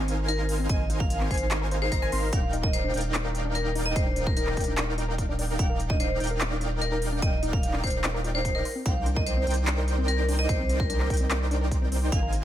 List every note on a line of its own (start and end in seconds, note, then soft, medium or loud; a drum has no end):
0.00 0.67 G#1 medium
0.00 0.67 D#4 medium
0.00 0.67 A#4 medium
0.00 0.67 C5 medium
0.00 0.67 F5 medium
0.00 0.67 G#5 medium
0.08 0.11 C4 medium
0.08 closed hi-hat medium
0.29 0.33 D#4 loud
0.29 0.46 A#4 loud
0.29 closed hi-hat medium
0.39 0.45 A#4 loud
0.49 open hi-hat loud
0.59 0.63 C4 loud
0.69 1.29 G#1 loud
0.69 1.28 D#4 medium
0.69 1.28 A#4 medium
0.69 1.28 C5 medium
0.69 0.87 D#5 medium
0.69 1.28 F5 medium
0.69 1.28 G#5 medium
0.69 kick loud
0.69 closed hi-hat medium
0.90 0.94 D#4 loud
0.90 closed hi-hat medium
1.00 1.06 A#4 loud
1.00 1.18 F5 medium
1.00 kick loud
1.10 closed hi-hat medium
1.21 1.25 C4 loud
1.21 clap soft
1.31 1.90 G#1 loud
1.31 1.33 C4 medium
1.31 1.90 D#4 medium
1.31 1.90 A#4 medium
1.31 1.90 C5 medium
1.31 1.48 C5 medium
1.31 1.90 F5 medium
1.31 1.90 G#5 medium
1.31 kick medium
1.31 closed hi-hat medium
1.34 closed hi-hat medium
1.37 closed hi-hat medium
1.51 1.55 D#4 loud
1.51 clap loud
1.51 closed hi-hat medium
1.61 1.67 A#4 loud
1.71 1.76 C5 loud
1.71 closed hi-hat medium
1.82 1.86 G#4 loud
1.82 1.88 C5 medium
1.92 2.00 G#1 loud
1.92 2.00 D#4 loud
1.92 2.00 A#4 medium
1.92 1.98 C5 medium
1.92 2.00 C5 medium
1.92 1.96 D#5 loud
1.92 2.00 F5 medium
1.92 2.00 A#5 loud
1.92 kick medium
1.92 closed hi-hat medium
2.02 2.10 G#1 loud
2.02 2.10 D#4 medium
2.02 2.37 A#4 medium
2.02 2.10 A#4 medium
2.02 2.10 C5 medium
2.02 2.05 C5 medium
2.02 2.10 F5 medium
2.02 2.10 G#5 loud
2.12 2.31 G#1 loud
2.12 2.19 C4 medium
2.12 2.28 D#4 medium
2.12 2.28 A#4 medium
2.12 2.28 C5 medium
2.12 2.28 F5 medium
2.12 2.28 C6 medium
2.12 open hi-hat loud
2.23 2.27 C5 medium
2.33 2.92 D#1 loud
2.33 2.35 D4 medium
2.33 2.92 D#4 medium
2.33 2.92 A#4 medium
2.33 2.92 D5 medium
2.33 2.50 F5 medium
2.33 2.92 F5 medium
2.33 2.92 G5 loud
2.33 kick loud
2.33 closed hi-hat medium
2.53 2.57 D#4 loud
2.53 closed hi-hat medium
2.63 2.69 A#4 loud
2.63 2.71 D#5 medium
2.63 kick loud
2.73 2.91 C5 medium
2.73 closed hi-hat medium
2.84 2.88 D4 loud
2.94 3.94 D#1 loud
2.94 2.96 D4 medium
2.94 3.94 D#4 medium
2.94 3.94 A#4 medium
2.94 3.94 D5 medium
2.94 3.94 F5 medium
2.94 3.94 G5 medium
2.94 closed hi-hat medium
2.97 closed hi-hat medium
3.01 closed hi-hat medium
3.14 3.18 D#4 loud
3.14 clap loud
3.14 closed hi-hat medium
3.25 3.31 A#4 loud
3.35 closed hi-hat medium
3.45 3.49 D4 loud
3.55 3.58 D4 medium
3.55 3.73 A#4 loud
3.55 closed hi-hat medium
3.75 3.80 D#4 loud
3.75 open hi-hat loud
3.86 3.92 A#4 loud
3.86 3.94 D#5 loud
3.96 4.55 D#1 loud
3.96 4.55 D#4 medium
3.96 4.55 A#4 medium
3.96 4.25 C5 medium
3.96 4.55 D5 medium
3.96 4.55 F5 medium
3.96 4.55 G5 medium
3.96 kick loud
3.96 closed hi-hat medium
4.06 4.10 D4 loud
4.16 4.19 D4 medium
4.16 closed hi-hat medium
4.27 4.35 A#4 medium
4.27 kick loud
4.37 4.41 D#4 loud
4.37 4.78 A#4 medium
4.37 closed hi-hat medium
4.47 4.53 A#4 loud
4.47 clap soft
4.57 5.57 D#1 loud
4.57 5.57 D#4 medium
4.57 5.57 A#4 medium
4.57 5.57 D5 medium
4.57 5.57 F5 medium
4.57 5.57 G5 medium
4.57 kick medium
4.57 closed hi-hat soft
4.61 closed hi-hat medium
4.64 4.72 D4 loud
4.64 closed hi-hat medium
4.78 4.80 D4 medium
4.78 clap loud
4.78 closed hi-hat medium
4.98 5.02 D#4 loud
4.98 closed hi-hat medium
5.08 5.14 A#4 loud
5.18 kick medium
5.18 closed hi-hat medium
5.29 5.33 D4 loud
5.39 5.41 D4 medium
5.39 open hi-hat medium
5.59 6.18 D#1 loud
5.59 5.63 D#4 loud
5.59 6.18 D#4 medium
5.59 6.18 A#4 medium
5.59 6.18 D5 medium
5.59 6.18 F5 medium
5.59 5.77 F5 medium
5.59 6.18 G5 loud
5.59 kick loud
5.59 closed hi-hat medium
5.69 5.76 A#4 loud
5.80 closed hi-hat medium
5.90 5.94 D4 loud
5.90 5.98 D#5 medium
5.90 kick loud
6.00 6.03 D4 medium
6.00 6.18 C5 medium
6.00 closed hi-hat medium
6.20 7.20 D#1 medium
6.20 7.20 D#4 medium
6.20 6.25 D#4 loud
6.20 7.20 A#4 medium
6.20 7.20 D5 medium
6.20 7.20 F5 medium
6.20 7.20 G5 medium
6.20 closed hi-hat soft
6.24 closed hi-hat medium
6.27 6.37 A#4 loud
6.27 closed hi-hat medium
6.41 clap loud
6.41 closed hi-hat medium
6.51 6.55 D4 loud
6.61 6.64 D4 medium
6.61 closed hi-hat medium
6.81 6.86 D#4 loud
6.81 6.99 A#4 loud
6.81 closed hi-hat medium
6.92 6.98 A#4 loud
7.02 open hi-hat medium
7.12 7.16 D4 loud
7.22 7.82 D#1 loud
7.22 7.25 D4 medium
7.22 7.81 D#4 medium
7.22 7.81 A#4 medium
7.22 7.81 D5 medium
7.22 7.40 D#5 medium
7.22 7.81 F5 medium
7.22 7.81 G5 medium
7.22 kick loud
7.22 closed hi-hat medium
7.43 7.47 D#4 loud
7.43 closed hi-hat medium
7.53 7.59 A#4 loud
7.53 7.71 F5 medium
7.53 kick loud
7.63 closed hi-hat medium
7.73 7.78 D4 loud
7.73 clap soft
7.83 8.62 D#1 loud
7.83 7.86 D4 medium
7.83 8.64 D#4 medium
7.83 8.64 A#4 medium
7.83 8.01 C5 medium
7.83 8.64 D5 medium
7.83 8.64 F5 medium
7.83 8.64 G5 medium
7.83 kick medium
7.83 closed hi-hat soft
7.87 closed hi-hat medium
7.90 closed hi-hat medium
8.04 8.08 D#4 loud
8.04 clap loud
8.04 closed hi-hat medium
8.14 8.20 A#4 loud
8.24 8.27 F4 medium
8.24 closed hi-hat medium
8.34 8.39 D4 loud
8.34 8.41 C5 medium
8.45 8.49 F4 medium
8.45 8.51 C5 medium
8.45 kick medium
8.45 closed hi-hat medium
8.55 8.69 A#4 medium
8.55 8.59 D#5 loud
8.65 8.68 C5 medium
8.65 open hi-hat medium
8.75 8.82 C4 medium
8.86 9.45 C2 loud
8.86 8.88 C4 medium
8.86 9.45 D#4 medium
8.86 9.45 A#4 medium
8.86 9.45 C5 medium
8.86 9.45 D5 medium
8.86 9.03 F5 medium
8.86 9.45 G5 loud
8.86 kick loud
8.86 closed hi-hat medium
9.06 9.10 D4 loud
9.06 closed hi-hat medium
9.16 9.23 A#4 loud
9.16 9.25 D#5 medium
9.16 kick loud
9.26 9.44 C5 medium
9.26 closed hi-hat medium
9.37 9.41 C4 loud
9.47 10.47 C2 loud
9.47 9.49 C4 medium
9.47 10.47 D#4 medium
9.47 10.47 A#4 medium
9.47 10.47 C5 medium
9.47 10.47 D5 medium
9.47 10.47 G5 medium
9.47 closed hi-hat soft
9.50 closed hi-hat medium
9.54 closed hi-hat medium
9.67 9.71 D4 loud
9.67 clap loud
9.67 closed hi-hat medium
9.78 9.84 A#4 loud
9.88 closed hi-hat medium
9.98 10.02 C4 loud
10.08 10.11 C4 medium
10.08 10.26 A#4 loud
10.08 closed hi-hat medium
10.28 10.33 D4 loud
10.28 open hi-hat loud
10.39 10.45 A#4 loud
10.39 10.47 D#5 loud
10.49 11.08 C2 loud
10.49 11.08 D#4 medium
10.49 11.08 A#4 medium
10.49 11.08 C5 medium
10.49 10.78 C5 loud
10.49 11.08 D5 medium
10.49 11.08 G5 medium
10.49 kick loud
10.49 closed hi-hat medium
10.59 10.63 C4 loud
10.69 10.72 C4 medium
10.69 closed hi-hat medium
10.80 10.88 A#4 medium
10.80 kick loud
10.90 10.94 D4 loud
10.90 11.31 A#4 medium
10.90 closed hi-hat medium
11.00 11.06 A#4 loud
11.00 clap soft
11.10 12.10 C2 loud
11.10 12.10 D#4 medium
11.10 12.10 A#4 medium
11.10 12.10 C5 medium
11.10 12.10 D5 medium
11.10 12.10 G5 medium
11.10 kick medium
11.10 closed hi-hat soft
11.14 closed hi-hat medium
11.17 11.24 C4 loud
11.17 closed hi-hat medium
11.31 11.33 C4 medium
11.31 clap loud
11.31 closed hi-hat medium
11.51 11.55 D4 loud
11.51 closed hi-hat medium
11.61 11.67 A#4 loud
11.71 kick medium
11.71 closed hi-hat medium
11.82 11.86 C4 loud
11.92 11.94 C4 medium
11.92 open hi-hat loud
12.12 12.44 G#1 loud
12.12 12.16 D#4 loud
12.12 12.44 D#4 medium
12.12 12.44 A#4 medium
12.12 12.44 C5 medium
12.12 12.30 F5 medium
12.12 12.44 F5 medium
12.12 12.44 G#5 loud
12.12 kick loud
12.12 closed hi-hat medium
12.22 12.29 A#4 loud
12.33 closed hi-hat medium